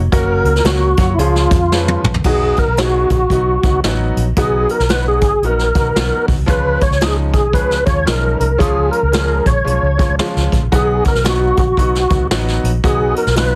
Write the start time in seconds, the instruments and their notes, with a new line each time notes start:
0.12 fingered electric bass F#1, grand piano F#3 A#3 C#4 F#4 A#4, tonewheel organ A#4, kick, closed hi-hat
0.44 fingered electric bass C#2, closed hi-hat
0.56 snare
0.64 fingered electric bass C#2, grand piano F#3 A#3 C#4 F#4 A#4, tonewheel organ F#4, snare, closed hi-hat
0.97 fingered electric bass F#2, grand piano F#3 A#3 C#4 F#4 C#5, kick, closed hi-hat
1.14 fingered electric bass C#2, tonewheel organ E4
1.18 grand piano F3 G#3 C#4 F4 G#4, tonewheel organ F4, closed hi-hat
1.36 snare
1.51 fingered electric bass F2, kick, closed hi-hat
1.72 grand piano F3 G#3 C#4 F4 B4, snare
1.88 high tom
2.03 fingered electric bass A#1, mid tom
2.14 floor tom
2.24 fingered electric bass B1, grand piano F#3 B3 D#4 F#4, tonewheel organ G#4, kick, crash
2.56 tonewheel organ A#4, kick, closed hi-hat
2.68 fingered electric bass B1
2.77 grand piano F#3 B3 D#4 G#4, tonewheel organ F#4, snare, closed hi-hat
3.10 fingered electric bass A#1, tonewheel organ F#4, kick, closed hi-hat
3.29 fingered electric bass B1, grand piano F#3 B3 D#4 F#4, kick, closed hi-hat
3.63 fingered electric bass C#2, grand piano F#3 B3 D#4 F#4, kick, closed hi-hat
3.84 fingered electric bass A1, grand piano F#3 B3 D#4 F#4, snare, closed hi-hat
4.17 fingered electric bass A#1, closed hi-hat
4.36 fingered electric bass B1, grand piano F#3 B3 D#4 F#4, tonewheel organ G#4, kick, closed hi-hat
4.69 tonewheel organ A#4, closed hi-hat
4.80 fingered electric bass B1, snare
4.89 grand piano F#3 B3 D#4 F#4, tonewheel organ B4, snare, closed hi-hat
5.08 tonewheel organ G#4
5.21 fingered electric bass G#1, kick, closed hi-hat
5.42 fingered electric bass A#1, grand piano F#3 B3 D#4 F#4, tonewheel organ A#4, closed hi-hat
5.59 snare
5.75 fingered electric bass B1, grand piano F#3 B3 D#4 F#4, kick, closed hi-hat
5.95 fingered electric bass B1, grand piano F#3 B3 D#4 F#4, snare, closed hi-hat
6.28 fingered electric bass B1, kick, open hi-hat
6.38 fingered electric bass C2
6.46 fingered electric bass C#2, grand piano F3 G#3 C#4 F4, tonewheel organ B4, kick, closed hi-hat
6.81 tonewheel organ C#5, kick, closed hi-hat
6.91 fingered electric bass C#2, snare
7.01 grand piano F3 G#3 C#4 D#4, tonewheel organ G#4, snare, closed hi-hat
7.33 fingered electric bass B1, tonewheel organ G#4, kick, closed hi-hat
7.53 fingered electric bass C#2, grand piano F3 G#3 C#4 G#4, tonewheel organ B4, kick, closed hi-hat
7.71 snare
7.86 fingered electric bass D#2, grand piano F3 G#3 C#4 F4, tonewheel organ C#5, kick, closed hi-hat
8.06 fingered electric bass B1, grand piano F3 G#3 C#4 D#4, tonewheel organ A#4, snare, closed hi-hat
8.40 fingered electric bass C2, tonewheel organ A#4, closed hi-hat
8.58 fingered electric bass C#2, grand piano F3 G#3 C#4 F4, tonewheel organ G#4, kick, closed hi-hat
8.91 tonewheel organ A#4, closed hi-hat
9.03 fingered electric bass C#2
9.12 grand piano F3 G#3 C#4 G#4, snare, closed hi-hat
9.46 fingered electric bass A#1, tonewheel organ C#5, kick, closed hi-hat
9.64 fingered electric bass B1, grand piano F3 G#3 C#4 F4, closed hi-hat
9.82 fingered electric bass C#2
9.98 grand piano F3 G#3 C#4 F4, kick, closed hi-hat
10.09 fingered electric bass C#2
10.19 grand piano F3 G#3 C#4 F4, snare, closed hi-hat
10.36 fingered electric bass C#2, snare
10.52 fingered electric bass A1, kick, closed hi-hat
10.63 fingered electric bass A#1
10.72 fingered electric bass B1, grand piano F#3 B3 D#4 F#4, tonewheel organ G#4, kick, closed hi-hat
11.04 tonewheel organ A#4, kick, closed hi-hat
11.15 fingered electric bass B1, snare
11.24 grand piano F#3 B3 D#4 F#4, tonewheel organ F#4, snare, closed hi-hat
11.57 fingered electric bass A#1, tonewheel organ F#4, kick, closed hi-hat
11.77 fingered electric bass B1, grand piano F#3 B3 D#4 F#4, kick, closed hi-hat
11.95 snare
12.09 fingered electric bass C#2, grand piano F#3 B3 D#4 F#4, kick, closed hi-hat
12.31 fingered electric bass A1, grand piano F#3 B3 D#4 F#4, snare, closed hi-hat
12.48 snare
12.63 fingered electric bass A#1, closed hi-hat
12.84 fingered electric bass B1, grand piano F#3 B3 D#4 F#4, tonewheel organ G#4, kick, closed hi-hat
13.16 tonewheel organ A#4, closed hi-hat
13.27 fingered electric bass B1, snare
13.36 grand piano F#3 B3 D#4 F4, tonewheel organ B4, snare, closed hi-hat